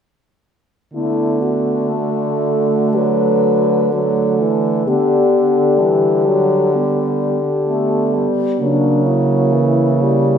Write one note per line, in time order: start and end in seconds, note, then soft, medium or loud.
0.93 4.82 D3 soft
0.93 2.97 A3 soft
0.93 1.92 B3 soft
0.93 1.43 E4 soft
1.41 2.96 F#4 soft
1.90 3.92 A3 soft
2.95 3.92 F#3 soft
2.95 3.93 B4 soft
3.92 4.41 F#3 soft
3.92 4.88 A3 soft
3.92 4.88 A4 soft
4.39 4.90 E3 soft
4.87 8.29 D3 soft
4.87 5.80 D3 soft
4.87 5.81 B3 soft
4.87 8.13 G4 soft
5.79 6.28 E3 soft
5.79 6.73 G3 soft
6.26 6.73 F#3 soft
6.74 7.39 G3 soft
6.74 7.39 B3 soft
7.67 8.15 A3 soft
7.67 8.62 B3 soft
8.14 8.59 G3 soft
8.59 10.38 C#3 soft
8.59 9.54 F#3 soft
8.59 10.38 A#3 soft
8.59 9.08 D4 soft
9.06 10.38 E4 soft
9.53 10.04 E3 soft
10.02 10.38 G3 soft